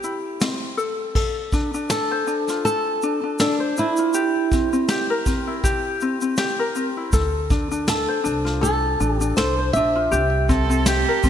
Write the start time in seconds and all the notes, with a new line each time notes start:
Already playing: C4 G4 C5
0.03 E4, shaker
0.41 C4, snare, shaker
0.77 A4, shaker
1.15 A4, kick, crash
1.52 D4, kick, shaker
1.74 D4, shaker
1.90 A4, snare, shaker
2.11 C5
2.27 D4, shaker
2.48 F4, snare, shaker
2.65 A4, shaker
3.02 D4, shaker
3.24 D4
3.39 D4 A4, snare, shaker
3.60 C5
3.77 D4 E4, shaker
3.97 F4, shaker
4.14 G4, shaker
4.52 C4, kick, shaker
4.73 C4, shaker
4.88 G4, snare, shaker
5.10 A#4
5.26 C4, kick, shaker
5.47 E4
5.64 G4, kick, shaker
6.01 C4, shaker
6.21 C4, shaker
6.37 G4, snare, shaker
6.59 A#4
6.75 C4, shaker
6.97 E4
7.13 D2 A4, kick, shaker
7.50 D4, kick, shaker
7.71 D4, shaker
7.87 A4, snare, shaker
8.08 C5
8.24 C2 D4, shaker
8.45 F4, snare
8.61 A4, shaker
9.00 A1 D4, shaker
9.15 G4
9.21 D4, shaker
9.37 C2 A4 C5, snare, shaker
9.59 C5
9.73 A#1 D4 E5, shaker
9.95 F4
10.11 C2 G4, shaker
10.49 C4 A4, kick, shaker
10.69 C4, shaker
10.86 G4, snare, shaker
11.08 A#4
11.23 A#1 C4, kick, shaker